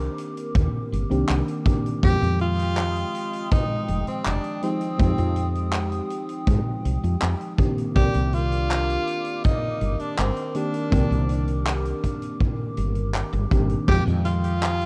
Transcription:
Already playing: fm electric piano D#3 A#3 C4 D4 G4, ambient pad A#4 D6
0.18 closed hi-hat
0.37 closed hi-hat
0.55 fretless electric bass D#2, kick, closed hi-hat
0.92 fretless electric bass G1, closed hi-hat
1.10 fretless electric bass C2, fm electric piano D#3 A#3 C4 D4 G4, closed hi-hat
1.29 fretless electric bass C2, clap, closed hi-hat
1.48 closed hi-hat
1.66 fm electric piano D#3 A#3 C4 D4 G4, kick, closed hi-hat
1.86 closed hi-hat
2.02 fretless electric bass F2, fm electric piano D#3 F3 G#3 C4 G4, ambient pad G#3 G5 D#6, tenor saxophone G4, kick, closed hi-hat
2.22 fretless electric bass F2, closed hi-hat
2.39 tenor saxophone F4, closed hi-hat
2.59 closed hi-hat
2.77 clap, closed hi-hat
2.96 closed hi-hat
3.15 closed hi-hat
3.33 closed hi-hat
3.51 tenor saxophone D#4, kick, closed hi-hat
3.88 fretless electric bass F1, closed hi-hat
4.07 tenor saxophone C4, muted fretless electric bass stroke, closed hi-hat
4.25 fretless electric bass F1, tenor saxophone D4, clap, closed hi-hat
4.44 closed hi-hat
4.62 fm electric piano F3 G#3 C4 D#4 G4, tenor saxophone C4, closed hi-hat
4.81 closed hi-hat
4.98 fretless electric bass F2, fm electric piano F3 G#3 C4 D#4 G4, kick, closed hi-hat
5.18 fretless electric bass F2, closed hi-hat
5.36 closed hi-hat
5.56 closed hi-hat
5.73 clap, closed hi-hat
5.92 closed hi-hat
6.10 closed hi-hat
6.29 closed hi-hat
6.47 fretless electric bass G#2, kick, closed hi-hat
6.85 fretless electric bass C2, closed hi-hat
7.04 fretless electric bass F2, closed hi-hat
7.22 fretless electric bass F2, clap, closed hi-hat
7.41 closed hi-hat
7.58 fm electric piano D#3 A#3 C4 D4 G4, ambient pad A#4 D6, kick, closed hi-hat
7.78 closed hi-hat
7.94 fretless electric bass C2, fm electric piano D#3 A#3 C4 G4 D5, tenor saxophone G4, kick, closed hi-hat
8.14 fretless electric bass C2, closed hi-hat
8.33 tenor saxophone F4, closed hi-hat
8.52 closed hi-hat
8.71 clap, closed hi-hat
8.89 closed hi-hat
9.07 closed hi-hat
9.24 closed hi-hat
9.44 tenor saxophone D#4, kick, closed hi-hat
9.81 fretless electric bass G1, closed hi-hat
9.99 tenor saxophone D4, muted fretless electric bass stroke, closed hi-hat
10.18 fretless electric bass G1, tenor saxophone C4, clap, closed hi-hat
10.36 closed hi-hat
10.54 fm electric piano D#3 A#3 C4 D4 G4, tenor saxophone D4, closed hi-hat
10.73 closed hi-hat
10.90 fretless electric bass C2, fm electric piano D#3 A#3 C4 D4 G4, kick, closed hi-hat
11.10 fretless electric bass C2, closed hi-hat
11.29 closed hi-hat
11.47 closed hi-hat
11.66 clap, closed hi-hat
11.85 closed hi-hat
12.04 kick, closed hi-hat
12.22 closed hi-hat
12.40 kick, closed hi-hat
12.77 fretless electric bass G1, closed hi-hat
12.95 closed hi-hat
13.14 clap, closed hi-hat
13.33 fretless electric bass G1, closed hi-hat
13.51 fretless electric bass G1, fm electric piano D#3 A#3 C4 D4 G4, kick, closed hi-hat
13.69 closed hi-hat
13.87 fretless electric bass F2, fm electric piano D#3 F3 G#3 C4 G4, ambient pad G#3 G5 D#6, tenor saxophone G4, kick, closed hi-hat, crash
14.07 fretless electric bass F2, closed hi-hat
14.25 tenor saxophone F4, closed hi-hat
14.44 closed hi-hat
14.63 clap, closed hi-hat
14.81 closed hi-hat

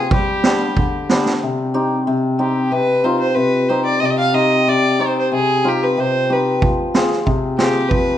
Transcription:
Already playing: hammered dulcimer C3, fiddle G#4
0.11 hammered dulcimer G3, fiddle G4, kick
0.44 hammered dulcimer B3 D4 G4, snare
0.77 hammered dulcimer D3, kick
1.09 hammered dulcimer B3 D4 G4, snare
1.26 snare
1.43 hammered dulcimer C3
1.74 hammered dulcimer C4 D#4 G4
2.07 hammered dulcimer C3
2.39 hammered dulcimer C4 D#4 G4, fiddle G4
2.72 hammered dulcimer C3, fiddle B4
3.04 hammered dulcimer C4 D#4 F4, fiddle C5
3.20 fiddle C5
3.35 hammered dulcimer C3, fiddle B4
3.69 hammered dulcimer C4 D#4 G4, fiddle C5
3.85 fiddle D5
4.00 hammered dulcimer C3, fiddle D#5
4.05 fiddle D5
4.10 fiddle D#5
4.19 fiddle F5
4.34 hammered dulcimer C4 D#4 G4, fiddle D#5
4.68 hammered dulcimer C3, fiddle D5
4.99 hammered dulcimer C4 D#4 G4, fiddle C5
5.18 fiddle C5
5.32 hammered dulcimer C3, fiddle G#4
5.65 hammered dulcimer C4 D#4 F4
5.69 fiddle G4
5.83 fiddle B4
5.97 hammered dulcimer C3, fiddle C5
6.30 hammered dulcimer C4 D#4 G4, fiddle B4
6.62 hammered dulcimer F3, kick
6.94 hammered dulcimer C4 F4 G#4, snare
7.12 snare
7.26 hammered dulcimer C3, kick
7.58 hammered dulcimer C4 F4 G#4, fiddle G4, snare
7.89 hammered dulcimer F3, fiddle B4, kick

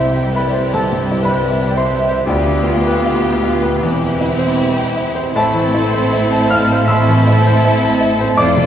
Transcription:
Already playing: grand piano C2 G2 E4 C5 E5 G5 C6 E6, double bass section C2, cello section C3, french horn section G3 E4, viola section G3, violin section E4 G4, clarinet C5, flute section E5
0.16 grand piano G5
0.33 clarinet B4, flute section D5, grand piano E5 B5
0.37 grand piano B4
0.53 grand piano C5
0.72 grand piano C2 A4 A5, clarinet A4, flute section C5
0.92 grand piano G2
1.11 grand piano E4
1.22 clarinet B4, flute section D5, grand piano B5
1.27 grand piano B4 C5
1.50 grand piano E5
1.70 grand piano G5
1.75 clarinet C5, grand piano C5 C6, flute section E5
1.86 grand piano E5
2.08 grand piano C5
2.24 cello section D2, double bass section D2, grand piano D2 G5, french horn section B3 F4, viola section B3, violin section F4 G4, clarinet G4, flute section B4
2.29 grand piano G4 D5
2.47 grand piano D3
2.67 grand piano F4
2.87 grand piano B4
3.06 grand piano F5
3.24 grand piano G5
3.43 grand piano F5
3.62 grand piano B4
3.80 double bass section E1, cello section E2, grand piano E2, french horn section C4 E4, viola section C4, violin section E4 G4
4.01 grand piano E3
4.21 grand piano E4
4.39 grand piano C5
4.59 grand piano E5
4.77 grand piano G5
4.96 grand piano E5
5.15 grand piano C5
5.33 double bass section A1, cello section A2, grand piano A2 E5 A5, french horn section C4 E4, viola section C4, violin section E4 A4, clarinet A4, flute section C5
5.37 grand piano A4
5.54 grand piano E3
5.74 grand piano E4
5.94 grand piano C5
6.13 grand piano E5
6.32 grand piano A5
6.49 grand piano E5 F5 F6, clarinet F5, flute section A5
6.72 grand piano C5
6.85 grand piano A2 E5 C6 E6, french horn section C4 E4, viola section C4, violin section E4 A4, clarinet E5, flute section A5
7.08 grand piano E3
7.27 grand piano E4
7.46 grand piano C5
7.65 grand piano E5
7.83 grand piano A5
8.01 grand piano E5
8.21 grand piano C5
8.37 double bass section F1, cello section F2, grand piano F2 D5 D6, french horn section A3 C4, viola section C4, violin section F4 A4, clarinet D5, flute section F5
8.57 grand piano C3

